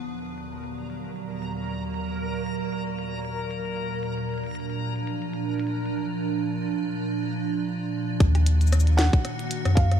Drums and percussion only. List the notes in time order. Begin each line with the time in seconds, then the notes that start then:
0.00 closed hi-hat
0.19 closed hi-hat
0.26 closed hi-hat
0.38 closed hi-hat
0.52 closed hi-hat
0.64 closed hi-hat
0.78 closed hi-hat
0.90 closed hi-hat
1.05 closed hi-hat
1.16 closed hi-hat
1.31 closed hi-hat
1.42 closed hi-hat
1.57 closed hi-hat
1.68 closed hi-hat
1.94 closed hi-hat
2.09 closed hi-hat
2.35 closed hi-hat
2.46 closed hi-hat
2.61 closed hi-hat
2.72 closed hi-hat
2.87 closed hi-hat
2.99 closed hi-hat
3.13 closed hi-hat
3.16 closed hi-hat
3.19 closed hi-hat
3.22 closed hi-hat
3.25 closed hi-hat
3.39 closed hi-hat
3.51 closed hi-hat
3.65 closed hi-hat
3.77 closed hi-hat
4.03 closed hi-hat
4.18 closed hi-hat
4.29 closed hi-hat
4.34 closed hi-hat
4.38 closed hi-hat
4.44 closed hi-hat
4.46 closed hi-hat
4.51 closed hi-hat
4.55 closed hi-hat
4.60 closed hi-hat
4.70 closed hi-hat
4.96 closed hi-hat
5.07 closed hi-hat
5.22 closed hi-hat
5.33 closed hi-hat
5.60 closed hi-hat
5.67 closed hi-hat
5.86 closed hi-hat
8.20 kick, closed hi-hat
8.35 cross-stick, closed hi-hat
8.46 closed hi-hat
8.61 closed hi-hat, cabasa
8.67 cabasa
8.73 cross-stick, closed hi-hat, cabasa
8.80 cabasa
8.87 closed hi-hat
8.99 cross-stick, snare, closed hi-hat
9.13 kick, closed hi-hat
9.25 cross-stick, closed hi-hat
9.39 closed hi-hat
9.51 closed hi-hat
9.65 cross-stick, closed hi-hat
9.77 kick, closed hi-hat
9.92 cross-stick, closed hi-hat